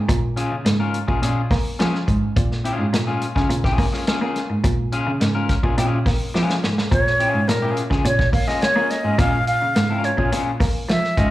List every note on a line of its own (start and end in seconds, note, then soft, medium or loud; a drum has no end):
0.09 0.47 A#2 loud
0.09 kick loud
0.09 closed hi-hat loud
0.36 0.55 C#4 medium
0.36 0.55 F4 medium
0.36 0.55 G#4 medium
0.36 closed hi-hat medium
0.51 0.64 C#3 medium
0.65 0.91 G#2 loud
0.65 snare loud
0.65 closed hi-hat loud
0.80 0.98 C#4 medium
0.80 0.98 F4 medium
0.80 0.98 A#4 medium
0.94 closed hi-hat medium
1.08 1.21 A#2 medium
1.08 1.21 C#4 medium
1.08 1.22 F4 medium
1.08 1.22 G#4 medium
1.08 kick medium
1.22 1.35 A#2 medium
1.22 1.40 C#4 medium
1.22 1.41 F4 medium
1.22 1.41 G#4 medium
1.22 closed hi-hat loud
1.51 1.64 A#3 medium
1.51 kick loud
1.51 snare soft
1.51 open hi-hat medium
1.79 1.92 F3 medium
1.79 1.97 C#4 medium
1.79 1.97 F4 medium
1.79 1.97 G#4 loud
1.79 snare loud
1.79 closed hi-hat medium
1.95 snare soft
2.08 2.21 G#2 medium
2.08 kick medium
2.08 closed hi-hat medium
2.37 2.75 A#2 medium
2.37 kick loud
2.37 closed hi-hat medium
2.52 snare soft
2.64 2.85 C#4 medium
2.64 2.85 F4 medium
2.64 2.85 G#4 medium
2.64 closed hi-hat medium
2.79 2.92 G#2 medium
2.93 3.19 A#2 medium
2.93 snare medium
2.93 closed hi-hat loud
3.07 3.26 C#4 medium
3.07 3.25 F4 medium
3.07 3.25 G#4 medium
3.21 closed hi-hat medium
3.35 3.49 C#3 medium
3.35 3.50 C#4 medium
3.35 3.50 F4 medium
3.35 3.50 G#4 medium
3.35 kick medium
3.35 snare soft
3.50 3.63 A#2 medium
3.50 closed hi-hat medium
3.64 3.85 C#4 medium
3.64 3.85 F4 medium
3.64 3.84 G#4 medium
3.64 kick medium
3.64 snare soft
3.78 3.91 A#3 medium
3.78 kick medium
3.78 open hi-hat medium
3.93 4.06 C#4 medium
3.93 4.07 F4 medium
3.93 4.07 G#4 medium
3.93 snare soft
4.07 4.21 C#4 medium
4.07 4.21 F4 medium
4.07 4.20 G#4 medium
4.07 snare loud
4.07 closed hi-hat medium
4.21 4.34 A#3 medium
4.21 4.40 C#4 medium
4.21 4.39 F4 medium
4.21 4.39 G#4 medium
4.36 snare soft
4.36 closed hi-hat medium
4.50 4.63 G#2 medium
4.64 5.02 A#2 loud
4.64 kick loud
4.64 closed hi-hat loud
4.92 5.10 C#4 medium
4.92 5.10 F4 medium
4.92 5.11 G#4 medium
4.92 closed hi-hat medium
5.07 5.19 C#3 medium
5.21 5.46 G#2 medium
5.21 snare medium
5.21 closed hi-hat medium
5.35 5.53 C#4 medium
5.35 5.53 F4 medium
5.35 5.53 A#4 medium
5.49 kick medium
5.49 snare soft
5.49 closed hi-hat medium
5.63 5.76 A#2 medium
5.63 5.76 C#4 medium
5.63 5.77 F4 medium
5.63 5.77 G#4 medium
5.63 kick medium
5.78 5.91 A#2 loud
5.78 5.98 C#4 medium
5.78 5.98 F4 medium
5.78 5.98 G#4 medium
5.78 closed hi-hat loud
6.06 6.19 A#3 medium
6.06 kick medium
6.06 snare soft
6.06 open hi-hat medium
6.34 6.47 F3 medium
6.34 6.55 C#4 medium
6.34 6.55 F4 medium
6.34 6.55 G#4 medium
6.34 snare medium
6.50 snare medium
6.63 6.76 G#2 medium
6.63 snare medium
6.78 snare medium
6.91 7.30 A#2 loud
6.91 7.49 C#5 loud
6.91 kick loud
6.91 closed hi-hat medium
7.07 snare soft
7.20 7.40 C#4 medium
7.20 7.40 F4 medium
7.20 7.40 G#4 medium
7.20 closed hi-hat medium
7.34 7.47 G#2 medium
7.48 7.74 A#2 medium
7.48 7.77 A#4 medium
7.48 snare loud
7.48 closed hi-hat medium
7.62 7.83 C#4 medium
7.62 7.83 F4 medium
7.62 7.82 G#4 medium
7.77 closed hi-hat medium
7.91 8.04 C#3 medium
7.91 8.05 C#4 medium
7.91 8.05 F4 medium
7.91 8.05 G#4 medium
7.91 kick medium
7.91 snare soft
8.05 8.18 A#2 loud
8.05 8.32 C#5 loud
8.05 closed hi-hat loud
8.19 kick medium
8.19 snare soft
8.33 8.46 A#3 medium
8.33 8.49 F5 medium
8.33 kick medium
8.33 open hi-hat medium
8.47 8.66 C#4 medium
8.47 8.66 F4 medium
8.47 8.65 G#4 medium
8.47 8.64 D#5 medium
8.47 snare soft
8.62 8.92 C#5 loud
8.62 snare loud
8.62 closed hi-hat medium
8.76 8.89 A#3 loud
8.76 8.94 C#4 medium
8.76 8.94 F4 medium
8.76 8.94 G#4 medium
8.90 9.21 D#5 medium
8.90 snare soft
8.90 closed hi-hat medium
9.04 9.17 G#2 medium
9.04 9.17 C#4 medium
9.04 9.18 F4 medium
9.04 9.19 G#4 medium
9.19 9.57 A#2 loud
9.19 9.37 C#4 medium
9.19 9.37 F4 medium
9.19 9.37 G#4 medium
9.19 9.47 F5 loud
9.19 kick loud
9.19 closed hi-hat loud
9.47 10.06 F5 loud
9.47 closed hi-hat medium
9.62 9.74 C#3 medium
9.76 10.01 G#2 loud
9.76 snare loud
9.76 closed hi-hat medium
9.90 10.11 C#4 medium
9.90 10.11 F4 medium
9.90 10.10 A#4 medium
10.04 10.33 C#5 medium
10.04 closed hi-hat medium
10.18 10.31 A#2 medium
10.18 10.31 C#4 medium
10.18 10.32 F4 medium
10.18 10.32 G#4 medium
10.18 kick medium
10.32 10.45 A#2 medium
10.32 10.50 C#4 medium
10.32 10.51 F4 medium
10.32 10.51 G#4 medium
10.32 closed hi-hat loud
10.60 10.73 A#3 medium
10.60 kick loud
10.60 snare soft
10.60 open hi-hat medium
10.89 11.02 F3 medium
10.89 11.20 E5 loud
10.89 snare loud
10.89 closed hi-hat medium
11.04 snare soft
11.17 11.30 G#2 medium
11.17 11.31 C#4 medium
11.17 11.31 F4 medium
11.17 11.31 G#4 loud
11.17 11.31 D#5 medium
11.17 kick medium
11.17 closed hi-hat medium